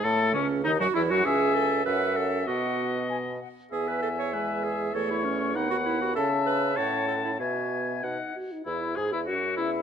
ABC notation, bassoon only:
X:1
M:2/4
L:1/16
Q:1/4=98
K:E
V:1 name="Bassoon" clef=bass
A,,2 C,,2 D,, F,, E,, F,, | C,,4 F,,4 | B,,6 z2 | E,,8 |
E,,4 D,,4 | C,4 A,,4 | B,,4 B,,2 z2 | E,,2 G,, E,, F,,2 E,,2 |]